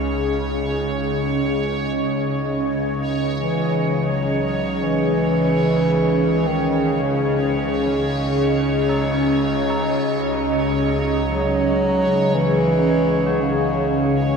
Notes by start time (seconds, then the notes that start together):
Already playing: C#2 C#3 C#4 G#4 C#5 D#5
3.38 E3
4.11 F#3
4.84 E3
6.46 D#3
7.02 C#3
8.89 D#4
9.70 D#4
11.29 F#3
12.35 E3
13.27 F#4
13.42 C#3